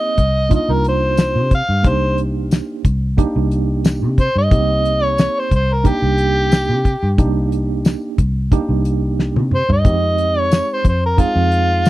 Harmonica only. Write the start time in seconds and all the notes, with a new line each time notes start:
Already playing: D#5
0.55 D#5
0.73 A#4
0.89 C5
1.55 F5
1.88 C5
4.20 C5
4.39 D#5
5.04 C#5
5.40 C5
5.56 C5
5.73 A#4
5.89 G4
9.55 C5
9.73 D#5
10.40 C#5
10.73 C5
10.89 C5
11.06 A#4
11.20 F4